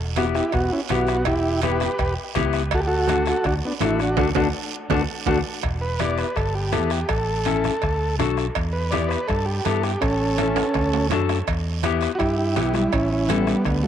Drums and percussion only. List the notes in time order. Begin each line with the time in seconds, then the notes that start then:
0.16 bombo rim, cowbell, high conga, short guiro
0.35 bombo rim, short guiro
0.52 bombo low, bombo rim, cowbell, high conga, long guiro
0.89 bombo rim, cowbell, high conga, short guiro
1.07 bombo rim, short guiro
1.25 bombo low, bombo rim, cowbell, long guiro
1.61 bombo rim, cowbell, high conga, short guiro
1.80 bombo rim, low conga, short guiro
1.99 bombo low, bombo rim, cowbell, high conga, long guiro
2.35 bombo low, bombo rim, cowbell, high conga, low conga, short guiro
2.53 bombo rim, short guiro
2.71 bombo low, bombo rim, cowbell, high conga, long guiro
3.07 bombo rim, cowbell, high conga, short guiro
3.26 bombo rim, short guiro
3.44 bombo low, bombo rim, cowbell, high conga, long guiro
3.80 bombo rim, cowbell, high conga, low timbale, short guiro
3.99 bombo rim, short guiro
4.17 bombo low, high conga, high timbale, long guiro
4.35 bombo low, high conga, high timbale, long guiro
4.90 bombo low, high conga, high timbale, long guiro
5.26 bombo low, high conga, high timbale, long guiro
5.63 bombo low, bombo rim, cowbell, high conga, long guiro
5.99 bombo rim, cowbell, high conga, short guiro
6.18 bombo rim, short guiro
6.36 bombo low, bombo rim, cowbell, high conga, long guiro
6.72 bombo rim, cowbell, high conga, low timbale, short guiro
6.90 bombo rim, short guiro
7.09 bombo low, bombo rim, cowbell, high conga, long guiro
7.45 bombo rim, cowbell, high conga, short guiro
7.64 bombo rim, low conga, short guiro
7.82 bombo low, bombo rim, cowbell, high conga, long guiro
8.19 bombo rim, cowbell, high conga, low conga, short guiro
8.37 bombo rim, short guiro
8.55 bombo low, bombo rim, cowbell, high conga, long guiro
8.92 bombo rim, cowbell, high conga, short guiro
9.10 bombo rim, short guiro
9.28 bombo low, bombo rim, cowbell, high conga, long guiro
9.65 bombo rim, cowbell, high conga, short guiro
9.83 bombo rim, short guiro
10.02 bombo low, bombo rim, cowbell, high conga, long guiro
10.38 bombo rim, cowbell, high conga, short guiro
10.56 bombo rim, low conga, high timbale, short guiro
10.74 bombo low, bombo rim, cowbell, high timbale, long guiro
10.93 low timbale
11.10 bombo rim, cowbell, high conga, low conga, low timbale, short guiro
11.29 bombo rim, low timbale, short guiro
11.47 bombo low, bombo rim, cowbell, high conga, long guiro
11.83 bombo rim, cowbell, high conga, short guiro
12.01 bombo rim, short guiro
12.20 bombo low, bombo rim, cowbell, high conga, long guiro
12.56 bombo rim, cowbell, high conga, short guiro
12.74 bombo rim, short guiro
12.92 bombo low, bombo rim, cowbell, high conga, long guiro
13.29 bombo rim, cowbell, high conga, short guiro
13.47 bombo rim, short guiro
13.65 bombo low, bombo rim, cowbell, long guiro